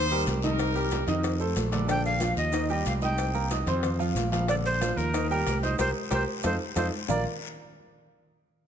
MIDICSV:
0, 0, Header, 1, 6, 480
1, 0, Start_track
1, 0, Key_signature, -2, "major"
1, 0, Tempo, 325027
1, 877, Time_signature, 4, 2, 24, 8
1, 12807, End_track
2, 0, Start_track
2, 0, Title_t, "Flute"
2, 0, Program_c, 0, 73
2, 2804, Note_on_c, 0, 79, 113
2, 3022, Note_off_c, 0, 79, 0
2, 3038, Note_on_c, 0, 77, 105
2, 3481, Note_off_c, 0, 77, 0
2, 3505, Note_on_c, 0, 75, 96
2, 3954, Note_off_c, 0, 75, 0
2, 4005, Note_on_c, 0, 75, 74
2, 4221, Note_off_c, 0, 75, 0
2, 4243, Note_on_c, 0, 77, 95
2, 4331, Note_off_c, 0, 77, 0
2, 4490, Note_on_c, 0, 79, 88
2, 5150, Note_off_c, 0, 79, 0
2, 6624, Note_on_c, 0, 74, 108
2, 6713, Note_off_c, 0, 74, 0
2, 6875, Note_on_c, 0, 72, 106
2, 7341, Note_on_c, 0, 70, 90
2, 7363, Note_off_c, 0, 72, 0
2, 7821, Note_off_c, 0, 70, 0
2, 7830, Note_on_c, 0, 70, 84
2, 8277, Note_off_c, 0, 70, 0
2, 8297, Note_on_c, 0, 72, 84
2, 8528, Note_off_c, 0, 72, 0
2, 8556, Note_on_c, 0, 72, 110
2, 8709, Note_off_c, 0, 72, 0
2, 9059, Note_on_c, 0, 72, 99
2, 9202, Note_off_c, 0, 72, 0
2, 9525, Note_on_c, 0, 72, 93
2, 9674, Note_off_c, 0, 72, 0
2, 9992, Note_on_c, 0, 72, 86
2, 10146, Note_off_c, 0, 72, 0
2, 10463, Note_on_c, 0, 74, 90
2, 10692, Note_off_c, 0, 74, 0
2, 12807, End_track
3, 0, Start_track
3, 0, Title_t, "Grand piano"
3, 0, Program_c, 1, 0
3, 164, Note_on_c, 1, 55, 83
3, 171, Note_on_c, 1, 67, 80
3, 177, Note_on_c, 1, 70, 87
3, 555, Note_off_c, 1, 55, 0
3, 559, Note_off_c, 1, 67, 0
3, 563, Note_off_c, 1, 70, 0
3, 643, Note_on_c, 1, 63, 90
3, 644, Note_on_c, 1, 51, 93
3, 652, Note_on_c, 1, 75, 85
3, 1033, Note_off_c, 1, 63, 0
3, 1034, Note_off_c, 1, 51, 0
3, 1039, Note_off_c, 1, 75, 0
3, 1103, Note_on_c, 1, 55, 78
3, 1113, Note_on_c, 1, 67, 83
3, 1115, Note_on_c, 1, 70, 83
3, 1501, Note_off_c, 1, 55, 0
3, 1507, Note_off_c, 1, 67, 0
3, 1509, Note_off_c, 1, 70, 0
3, 1586, Note_on_c, 1, 51, 85
3, 1590, Note_on_c, 1, 63, 96
3, 1594, Note_on_c, 1, 75, 94
3, 1982, Note_off_c, 1, 51, 0
3, 1985, Note_off_c, 1, 63, 0
3, 1987, Note_off_c, 1, 75, 0
3, 2062, Note_on_c, 1, 57, 80
3, 2073, Note_on_c, 1, 69, 79
3, 2076, Note_on_c, 1, 72, 85
3, 2460, Note_off_c, 1, 57, 0
3, 2466, Note_off_c, 1, 69, 0
3, 2468, Note_off_c, 1, 72, 0
3, 2538, Note_on_c, 1, 50, 86
3, 2545, Note_on_c, 1, 62, 87
3, 2548, Note_on_c, 1, 74, 86
3, 2741, Note_off_c, 1, 50, 0
3, 2745, Note_off_c, 1, 62, 0
3, 2746, Note_off_c, 1, 74, 0
3, 2768, Note_on_c, 1, 50, 79
3, 2777, Note_on_c, 1, 62, 73
3, 2779, Note_on_c, 1, 74, 79
3, 3171, Note_off_c, 1, 50, 0
3, 3177, Note_off_c, 1, 62, 0
3, 3178, Note_off_c, 1, 74, 0
3, 3262, Note_on_c, 1, 53, 71
3, 3265, Note_on_c, 1, 65, 69
3, 3273, Note_on_c, 1, 77, 76
3, 3659, Note_off_c, 1, 53, 0
3, 3661, Note_off_c, 1, 65, 0
3, 3666, Note_off_c, 1, 77, 0
3, 3723, Note_on_c, 1, 51, 91
3, 3730, Note_on_c, 1, 75, 91
3, 3732, Note_on_c, 1, 63, 78
3, 3931, Note_off_c, 1, 51, 0
3, 3935, Note_off_c, 1, 75, 0
3, 3936, Note_off_c, 1, 63, 0
3, 3981, Note_on_c, 1, 55, 80
3, 3985, Note_on_c, 1, 67, 85
3, 3989, Note_on_c, 1, 79, 75
3, 4378, Note_off_c, 1, 55, 0
3, 4381, Note_off_c, 1, 67, 0
3, 4383, Note_off_c, 1, 79, 0
3, 4463, Note_on_c, 1, 75, 76
3, 4464, Note_on_c, 1, 63, 84
3, 4466, Note_on_c, 1, 87, 78
3, 4860, Note_off_c, 1, 63, 0
3, 4860, Note_off_c, 1, 75, 0
3, 4862, Note_off_c, 1, 87, 0
3, 4937, Note_on_c, 1, 58, 77
3, 4939, Note_on_c, 1, 70, 77
3, 4942, Note_on_c, 1, 82, 84
3, 5139, Note_off_c, 1, 58, 0
3, 5140, Note_off_c, 1, 70, 0
3, 5142, Note_off_c, 1, 82, 0
3, 5174, Note_on_c, 1, 63, 72
3, 5177, Note_on_c, 1, 75, 79
3, 5184, Note_on_c, 1, 87, 80
3, 5378, Note_off_c, 1, 63, 0
3, 5379, Note_off_c, 1, 75, 0
3, 5384, Note_off_c, 1, 87, 0
3, 5430, Note_on_c, 1, 60, 82
3, 5432, Note_on_c, 1, 84, 74
3, 5435, Note_on_c, 1, 72, 88
3, 5824, Note_off_c, 1, 60, 0
3, 5825, Note_off_c, 1, 84, 0
3, 5827, Note_off_c, 1, 72, 0
3, 5895, Note_on_c, 1, 53, 95
3, 5899, Note_on_c, 1, 77, 92
3, 5903, Note_on_c, 1, 65, 93
3, 6295, Note_off_c, 1, 53, 0
3, 6298, Note_off_c, 1, 77, 0
3, 6300, Note_off_c, 1, 65, 0
3, 6381, Note_on_c, 1, 53, 88
3, 6383, Note_on_c, 1, 65, 73
3, 6387, Note_on_c, 1, 77, 85
3, 6582, Note_off_c, 1, 53, 0
3, 6583, Note_off_c, 1, 65, 0
3, 6585, Note_off_c, 1, 77, 0
3, 6618, Note_on_c, 1, 50, 84
3, 6628, Note_on_c, 1, 74, 77
3, 6629, Note_on_c, 1, 62, 76
3, 7017, Note_off_c, 1, 50, 0
3, 7023, Note_off_c, 1, 74, 0
3, 7024, Note_off_c, 1, 62, 0
3, 7103, Note_on_c, 1, 53, 77
3, 7106, Note_on_c, 1, 65, 74
3, 7109, Note_on_c, 1, 77, 76
3, 7500, Note_off_c, 1, 53, 0
3, 7502, Note_off_c, 1, 65, 0
3, 7504, Note_off_c, 1, 77, 0
3, 7584, Note_on_c, 1, 63, 89
3, 7586, Note_on_c, 1, 51, 85
3, 7592, Note_on_c, 1, 75, 82
3, 7784, Note_off_c, 1, 63, 0
3, 7785, Note_off_c, 1, 51, 0
3, 7789, Note_off_c, 1, 75, 0
3, 7831, Note_on_c, 1, 55, 79
3, 7841, Note_on_c, 1, 67, 85
3, 7845, Note_on_c, 1, 79, 86
3, 8225, Note_off_c, 1, 55, 0
3, 8231, Note_off_c, 1, 67, 0
3, 8233, Note_off_c, 1, 79, 0
3, 8315, Note_on_c, 1, 63, 84
3, 8315, Note_on_c, 1, 75, 84
3, 8316, Note_on_c, 1, 87, 80
3, 8511, Note_off_c, 1, 63, 0
3, 8511, Note_off_c, 1, 75, 0
3, 8511, Note_off_c, 1, 87, 0
3, 8544, Note_on_c, 1, 72, 82
3, 8545, Note_on_c, 1, 67, 89
3, 8552, Note_on_c, 1, 70, 91
3, 8701, Note_off_c, 1, 72, 0
3, 8702, Note_off_c, 1, 67, 0
3, 8706, Note_off_c, 1, 70, 0
3, 9016, Note_on_c, 1, 67, 103
3, 9017, Note_on_c, 1, 70, 96
3, 9024, Note_on_c, 1, 72, 98
3, 9177, Note_off_c, 1, 67, 0
3, 9177, Note_off_c, 1, 70, 0
3, 9182, Note_off_c, 1, 72, 0
3, 9505, Note_on_c, 1, 63, 96
3, 9506, Note_on_c, 1, 65, 98
3, 9506, Note_on_c, 1, 69, 93
3, 9662, Note_off_c, 1, 63, 0
3, 9663, Note_off_c, 1, 65, 0
3, 9663, Note_off_c, 1, 69, 0
3, 9979, Note_on_c, 1, 69, 92
3, 9983, Note_on_c, 1, 63, 101
3, 9987, Note_on_c, 1, 65, 100
3, 10139, Note_off_c, 1, 69, 0
3, 10141, Note_off_c, 1, 63, 0
3, 10144, Note_off_c, 1, 65, 0
3, 10464, Note_on_c, 1, 58, 81
3, 10471, Note_on_c, 1, 65, 81
3, 10474, Note_on_c, 1, 70, 80
3, 10478, Note_on_c, 1, 74, 84
3, 10481, Note_on_c, 1, 77, 75
3, 10484, Note_on_c, 1, 82, 95
3, 10693, Note_off_c, 1, 58, 0
3, 10696, Note_off_c, 1, 65, 0
3, 10698, Note_off_c, 1, 70, 0
3, 10700, Note_off_c, 1, 74, 0
3, 10702, Note_off_c, 1, 77, 0
3, 10703, Note_off_c, 1, 82, 0
3, 12807, End_track
4, 0, Start_track
4, 0, Title_t, "Horn section"
4, 0, Program_c, 2, 61
4, 0, Note_on_c, 2, 63, 90
4, 0, Note_on_c, 2, 72, 116
4, 369, Note_off_c, 2, 72, 0
4, 378, Note_off_c, 2, 63, 0
4, 652, Note_on_c, 2, 70, 87
4, 655, Note_on_c, 2, 63, 70
4, 1543, Note_off_c, 2, 70, 0
4, 1545, Note_off_c, 2, 63, 0
4, 12807, End_track
5, 0, Start_track
5, 0, Title_t, "Fretless electric bass"
5, 0, Program_c, 3, 35
5, 0, Note_on_c, 3, 39, 100
5, 350, Note_off_c, 3, 39, 0
5, 395, Note_on_c, 3, 36, 108
5, 1511, Note_off_c, 3, 36, 0
5, 1576, Note_on_c, 3, 41, 102
5, 2253, Note_off_c, 3, 41, 0
5, 2304, Note_on_c, 3, 34, 98
5, 3424, Note_off_c, 3, 34, 0
5, 3495, Note_on_c, 3, 39, 96
5, 4172, Note_off_c, 3, 39, 0
5, 4227, Note_on_c, 3, 36, 97
5, 5345, Note_off_c, 3, 36, 0
5, 5410, Note_on_c, 3, 41, 102
5, 6089, Note_off_c, 3, 41, 0
5, 6124, Note_on_c, 3, 34, 98
5, 7255, Note_off_c, 3, 34, 0
5, 7339, Note_on_c, 3, 39, 96
5, 8015, Note_off_c, 3, 39, 0
5, 8071, Note_on_c, 3, 36, 92
5, 8518, Note_off_c, 3, 36, 0
5, 8549, Note_on_c, 3, 36, 101
5, 8729, Note_off_c, 3, 36, 0
5, 9020, Note_on_c, 3, 36, 90
5, 9205, Note_off_c, 3, 36, 0
5, 9508, Note_on_c, 3, 41, 92
5, 9689, Note_off_c, 3, 41, 0
5, 9978, Note_on_c, 3, 41, 100
5, 10164, Note_off_c, 3, 41, 0
5, 10464, Note_on_c, 3, 34, 97
5, 10692, Note_off_c, 3, 34, 0
5, 12807, End_track
6, 0, Start_track
6, 0, Title_t, "Drums"
6, 156, Note_on_c, 9, 63, 43
6, 161, Note_on_c, 9, 70, 32
6, 303, Note_off_c, 9, 63, 0
6, 308, Note_off_c, 9, 70, 0
6, 393, Note_on_c, 9, 70, 66
6, 399, Note_on_c, 9, 73, 79
6, 400, Note_on_c, 9, 56, 72
6, 406, Note_on_c, 9, 63, 80
6, 541, Note_off_c, 9, 70, 0
6, 547, Note_off_c, 9, 73, 0
6, 548, Note_off_c, 9, 56, 0
6, 553, Note_off_c, 9, 63, 0
6, 627, Note_on_c, 9, 73, 81
6, 633, Note_on_c, 9, 70, 30
6, 653, Note_on_c, 9, 63, 79
6, 774, Note_off_c, 9, 73, 0
6, 781, Note_off_c, 9, 70, 0
6, 801, Note_off_c, 9, 63, 0
6, 865, Note_on_c, 9, 74, 67
6, 871, Note_on_c, 9, 70, 70
6, 877, Note_on_c, 9, 56, 115
6, 901, Note_on_c, 9, 63, 31
6, 1013, Note_off_c, 9, 74, 0
6, 1018, Note_off_c, 9, 70, 0
6, 1025, Note_off_c, 9, 56, 0
6, 1048, Note_off_c, 9, 63, 0
6, 1111, Note_on_c, 9, 70, 30
6, 1134, Note_on_c, 9, 63, 40
6, 1259, Note_off_c, 9, 70, 0
6, 1282, Note_off_c, 9, 63, 0
6, 1340, Note_on_c, 9, 70, 80
6, 1345, Note_on_c, 9, 73, 65
6, 1358, Note_on_c, 9, 56, 76
6, 1362, Note_on_c, 9, 63, 87
6, 1487, Note_off_c, 9, 70, 0
6, 1493, Note_off_c, 9, 73, 0
6, 1506, Note_off_c, 9, 56, 0
6, 1510, Note_off_c, 9, 63, 0
6, 1586, Note_on_c, 9, 70, 31
6, 1590, Note_on_c, 9, 73, 68
6, 1593, Note_on_c, 9, 56, 67
6, 1601, Note_on_c, 9, 63, 37
6, 1601, Note_on_c, 9, 64, 78
6, 1734, Note_off_c, 9, 70, 0
6, 1738, Note_off_c, 9, 73, 0
6, 1741, Note_off_c, 9, 56, 0
6, 1749, Note_off_c, 9, 63, 0
6, 1749, Note_off_c, 9, 64, 0
6, 1824, Note_on_c, 9, 74, 82
6, 1827, Note_on_c, 9, 63, 37
6, 1827, Note_on_c, 9, 70, 76
6, 1833, Note_on_c, 9, 56, 118
6, 1971, Note_off_c, 9, 74, 0
6, 1974, Note_off_c, 9, 63, 0
6, 1975, Note_off_c, 9, 70, 0
6, 1981, Note_off_c, 9, 56, 0
6, 2062, Note_on_c, 9, 70, 31
6, 2079, Note_on_c, 9, 63, 38
6, 2210, Note_off_c, 9, 70, 0
6, 2227, Note_off_c, 9, 63, 0
6, 2303, Note_on_c, 9, 73, 75
6, 2309, Note_on_c, 9, 70, 74
6, 2310, Note_on_c, 9, 56, 72
6, 2310, Note_on_c, 9, 63, 84
6, 2451, Note_off_c, 9, 73, 0
6, 2457, Note_off_c, 9, 70, 0
6, 2458, Note_off_c, 9, 56, 0
6, 2458, Note_off_c, 9, 63, 0
6, 2544, Note_on_c, 9, 63, 87
6, 2544, Note_on_c, 9, 73, 70
6, 2546, Note_on_c, 9, 70, 29
6, 2548, Note_on_c, 9, 56, 70
6, 2692, Note_off_c, 9, 63, 0
6, 2692, Note_off_c, 9, 73, 0
6, 2694, Note_off_c, 9, 70, 0
6, 2696, Note_off_c, 9, 56, 0
6, 2783, Note_on_c, 9, 74, 65
6, 2787, Note_on_c, 9, 70, 61
6, 2791, Note_on_c, 9, 56, 103
6, 2931, Note_off_c, 9, 74, 0
6, 2935, Note_off_c, 9, 70, 0
6, 2939, Note_off_c, 9, 56, 0
6, 3019, Note_on_c, 9, 63, 38
6, 3029, Note_on_c, 9, 70, 30
6, 3167, Note_off_c, 9, 63, 0
6, 3177, Note_off_c, 9, 70, 0
6, 3252, Note_on_c, 9, 63, 96
6, 3258, Note_on_c, 9, 70, 75
6, 3266, Note_on_c, 9, 73, 69
6, 3273, Note_on_c, 9, 56, 77
6, 3400, Note_off_c, 9, 63, 0
6, 3406, Note_off_c, 9, 70, 0
6, 3413, Note_off_c, 9, 73, 0
6, 3421, Note_off_c, 9, 56, 0
6, 3495, Note_on_c, 9, 70, 30
6, 3501, Note_on_c, 9, 73, 72
6, 3504, Note_on_c, 9, 63, 33
6, 3643, Note_off_c, 9, 70, 0
6, 3649, Note_off_c, 9, 73, 0
6, 3652, Note_off_c, 9, 63, 0
6, 3730, Note_on_c, 9, 70, 70
6, 3742, Note_on_c, 9, 63, 38
6, 3745, Note_on_c, 9, 74, 80
6, 3746, Note_on_c, 9, 56, 97
6, 3878, Note_off_c, 9, 70, 0
6, 3890, Note_off_c, 9, 63, 0
6, 3892, Note_off_c, 9, 74, 0
6, 3894, Note_off_c, 9, 56, 0
6, 3976, Note_on_c, 9, 70, 31
6, 3995, Note_on_c, 9, 63, 42
6, 4124, Note_off_c, 9, 70, 0
6, 4143, Note_off_c, 9, 63, 0
6, 4213, Note_on_c, 9, 70, 69
6, 4220, Note_on_c, 9, 63, 88
6, 4225, Note_on_c, 9, 73, 74
6, 4230, Note_on_c, 9, 56, 80
6, 4361, Note_off_c, 9, 70, 0
6, 4368, Note_off_c, 9, 63, 0
6, 4373, Note_off_c, 9, 73, 0
6, 4378, Note_off_c, 9, 56, 0
6, 4450, Note_on_c, 9, 70, 29
6, 4455, Note_on_c, 9, 63, 79
6, 4463, Note_on_c, 9, 73, 79
6, 4597, Note_off_c, 9, 70, 0
6, 4603, Note_off_c, 9, 63, 0
6, 4611, Note_off_c, 9, 73, 0
6, 4693, Note_on_c, 9, 70, 72
6, 4698, Note_on_c, 9, 74, 76
6, 4703, Note_on_c, 9, 56, 99
6, 4703, Note_on_c, 9, 63, 32
6, 4841, Note_off_c, 9, 70, 0
6, 4845, Note_off_c, 9, 74, 0
6, 4850, Note_off_c, 9, 56, 0
6, 4851, Note_off_c, 9, 63, 0
6, 4934, Note_on_c, 9, 70, 29
6, 4956, Note_on_c, 9, 63, 39
6, 5081, Note_off_c, 9, 70, 0
6, 5104, Note_off_c, 9, 63, 0
6, 5174, Note_on_c, 9, 70, 78
6, 5182, Note_on_c, 9, 73, 67
6, 5185, Note_on_c, 9, 56, 77
6, 5187, Note_on_c, 9, 63, 95
6, 5321, Note_off_c, 9, 70, 0
6, 5329, Note_off_c, 9, 73, 0
6, 5333, Note_off_c, 9, 56, 0
6, 5334, Note_off_c, 9, 63, 0
6, 5419, Note_on_c, 9, 70, 31
6, 5421, Note_on_c, 9, 73, 72
6, 5423, Note_on_c, 9, 56, 72
6, 5433, Note_on_c, 9, 63, 35
6, 5433, Note_on_c, 9, 64, 79
6, 5567, Note_off_c, 9, 70, 0
6, 5569, Note_off_c, 9, 73, 0
6, 5570, Note_off_c, 9, 56, 0
6, 5581, Note_off_c, 9, 63, 0
6, 5581, Note_off_c, 9, 64, 0
6, 5655, Note_on_c, 9, 56, 112
6, 5664, Note_on_c, 9, 70, 68
6, 5665, Note_on_c, 9, 63, 35
6, 5665, Note_on_c, 9, 64, 69
6, 5668, Note_on_c, 9, 74, 73
6, 5803, Note_off_c, 9, 56, 0
6, 5812, Note_off_c, 9, 70, 0
6, 5813, Note_off_c, 9, 63, 0
6, 5813, Note_off_c, 9, 64, 0
6, 5816, Note_off_c, 9, 74, 0
6, 5907, Note_on_c, 9, 70, 34
6, 5912, Note_on_c, 9, 63, 44
6, 6054, Note_off_c, 9, 70, 0
6, 6059, Note_off_c, 9, 63, 0
6, 6143, Note_on_c, 9, 73, 74
6, 6145, Note_on_c, 9, 70, 67
6, 6154, Note_on_c, 9, 56, 71
6, 6161, Note_on_c, 9, 63, 80
6, 6290, Note_off_c, 9, 73, 0
6, 6293, Note_off_c, 9, 70, 0
6, 6302, Note_off_c, 9, 56, 0
6, 6309, Note_off_c, 9, 63, 0
6, 6383, Note_on_c, 9, 73, 75
6, 6390, Note_on_c, 9, 63, 73
6, 6396, Note_on_c, 9, 56, 74
6, 6396, Note_on_c, 9, 70, 30
6, 6531, Note_off_c, 9, 73, 0
6, 6538, Note_off_c, 9, 63, 0
6, 6544, Note_off_c, 9, 56, 0
6, 6544, Note_off_c, 9, 70, 0
6, 6621, Note_on_c, 9, 56, 102
6, 6623, Note_on_c, 9, 74, 68
6, 6633, Note_on_c, 9, 70, 66
6, 6635, Note_on_c, 9, 63, 32
6, 6769, Note_off_c, 9, 56, 0
6, 6771, Note_off_c, 9, 74, 0
6, 6780, Note_off_c, 9, 70, 0
6, 6783, Note_off_c, 9, 63, 0
6, 6870, Note_on_c, 9, 70, 29
6, 6878, Note_on_c, 9, 63, 36
6, 7018, Note_off_c, 9, 70, 0
6, 7026, Note_off_c, 9, 63, 0
6, 7112, Note_on_c, 9, 56, 76
6, 7112, Note_on_c, 9, 63, 94
6, 7113, Note_on_c, 9, 73, 69
6, 7118, Note_on_c, 9, 70, 76
6, 7259, Note_off_c, 9, 63, 0
6, 7260, Note_off_c, 9, 56, 0
6, 7261, Note_off_c, 9, 73, 0
6, 7266, Note_off_c, 9, 70, 0
6, 7349, Note_on_c, 9, 73, 73
6, 7353, Note_on_c, 9, 70, 33
6, 7360, Note_on_c, 9, 63, 36
6, 7497, Note_off_c, 9, 73, 0
6, 7501, Note_off_c, 9, 70, 0
6, 7508, Note_off_c, 9, 63, 0
6, 7593, Note_on_c, 9, 70, 68
6, 7594, Note_on_c, 9, 56, 121
6, 7597, Note_on_c, 9, 74, 74
6, 7608, Note_on_c, 9, 63, 34
6, 7741, Note_off_c, 9, 70, 0
6, 7742, Note_off_c, 9, 56, 0
6, 7745, Note_off_c, 9, 74, 0
6, 7756, Note_off_c, 9, 63, 0
6, 7840, Note_on_c, 9, 70, 32
6, 7845, Note_on_c, 9, 63, 42
6, 7988, Note_off_c, 9, 70, 0
6, 7993, Note_off_c, 9, 63, 0
6, 8071, Note_on_c, 9, 56, 80
6, 8072, Note_on_c, 9, 73, 78
6, 8079, Note_on_c, 9, 70, 74
6, 8088, Note_on_c, 9, 63, 77
6, 8218, Note_off_c, 9, 56, 0
6, 8220, Note_off_c, 9, 73, 0
6, 8227, Note_off_c, 9, 70, 0
6, 8235, Note_off_c, 9, 63, 0
6, 8317, Note_on_c, 9, 73, 77
6, 8323, Note_on_c, 9, 70, 29
6, 8324, Note_on_c, 9, 63, 82
6, 8465, Note_off_c, 9, 73, 0
6, 8470, Note_off_c, 9, 70, 0
6, 8471, Note_off_c, 9, 63, 0
6, 8548, Note_on_c, 9, 56, 100
6, 8550, Note_on_c, 9, 70, 104
6, 8554, Note_on_c, 9, 74, 95
6, 8555, Note_on_c, 9, 63, 89
6, 8695, Note_off_c, 9, 56, 0
6, 8698, Note_off_c, 9, 70, 0
6, 8702, Note_off_c, 9, 74, 0
6, 8703, Note_off_c, 9, 63, 0
6, 9025, Note_on_c, 9, 56, 110
6, 9030, Note_on_c, 9, 70, 110
6, 9040, Note_on_c, 9, 63, 100
6, 9048, Note_on_c, 9, 74, 104
6, 9173, Note_off_c, 9, 56, 0
6, 9177, Note_off_c, 9, 70, 0
6, 9188, Note_off_c, 9, 63, 0
6, 9195, Note_off_c, 9, 74, 0
6, 9500, Note_on_c, 9, 70, 99
6, 9507, Note_on_c, 9, 56, 103
6, 9515, Note_on_c, 9, 74, 104
6, 9517, Note_on_c, 9, 63, 98
6, 9648, Note_off_c, 9, 70, 0
6, 9654, Note_off_c, 9, 56, 0
6, 9663, Note_off_c, 9, 74, 0
6, 9665, Note_off_c, 9, 63, 0
6, 9982, Note_on_c, 9, 70, 101
6, 9992, Note_on_c, 9, 56, 107
6, 9994, Note_on_c, 9, 63, 94
6, 9995, Note_on_c, 9, 74, 112
6, 10130, Note_off_c, 9, 70, 0
6, 10139, Note_off_c, 9, 56, 0
6, 10142, Note_off_c, 9, 63, 0
6, 10143, Note_off_c, 9, 74, 0
6, 10461, Note_on_c, 9, 61, 102
6, 10472, Note_on_c, 9, 74, 96
6, 10475, Note_on_c, 9, 64, 87
6, 10475, Note_on_c, 9, 70, 94
6, 10608, Note_off_c, 9, 61, 0
6, 10619, Note_off_c, 9, 74, 0
6, 10622, Note_off_c, 9, 70, 0
6, 10623, Note_off_c, 9, 64, 0
6, 12807, End_track
0, 0, End_of_file